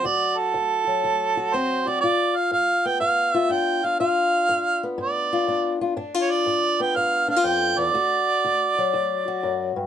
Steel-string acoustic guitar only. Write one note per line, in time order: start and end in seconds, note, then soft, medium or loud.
0.00 0.86 F#3 medium
0.04 0.50 D2 medium
0.04 1.36 F#4 medium
0.54 1.00 D2 medium
0.87 2.02 F#3 soft
1.04 1.49 D2 medium
1.37 1.86 F#4 medium
1.54 1.99 D2 medium
1.54 2.01 C4 medium
1.87 2.01 F#4 medium
2.03 2.49 G2 medium
2.03 3.34 F4 medium
2.51 2.97 G2 medium
2.85 4.03 B3 medium
3.01 3.47 G2 medium
3.34 3.84 F4 medium
3.50 3.96 G2 medium
3.50 5.48 D4 medium
3.84 4.00 F4 medium
4.00 4.46 G2 medium
4.00 5.32 F4 medium
4.49 4.95 G2 medium
4.83 5.96 B3 medium
4.98 5.44 G2 medium
5.33 5.80 F4 medium
5.47 5.93 G2 medium
5.47 5.97 D4 medium
5.81 5.95 F4 medium
5.97 6.43 G2 medium
5.97 6.14 D4 medium
6.14 7.28 F4 medium
6.46 6.92 G2 medium
6.80 7.93 B3 medium
6.96 7.42 G2 medium
7.28 7.36 D4 medium
7.36 7.94 F4 medium
7.44 7.77 F2 medium
7.78 7.94 E2 medium
7.94 8.40 D2 medium
7.94 9.27 F#4 medium
8.45 8.90 D2 medium
8.78 9.87 F#3 medium
8.94 9.39 D2 medium
9.28 9.87 F#4 medium
9.43 9.76 F#2 medium
9.76 9.87 G2 medium